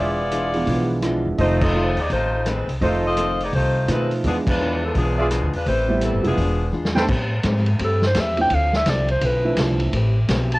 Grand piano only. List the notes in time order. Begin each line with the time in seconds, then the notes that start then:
0.53 E3 F3 G#3 B3 D4
1.02 F3 G#3 B3 D4 E4
1.38 F3 A3 C4 D#4 F4
1.73 F3 A3 C4 D#4 F4
2.81 F3 A3 C4 D#4 F4
3.88 F3 A3 D#4 F4 C5
4.24 E3 F3 G#3 B3 D4
5.89 G3 A3 B3 C4 E4
6.23 F3 G#3 B3 D4 E4
6.95 G3 A3 B3 C4 D4
8.37 F3 A3 C4 D4 E4
9.44 F3 A3 C4 D4 E4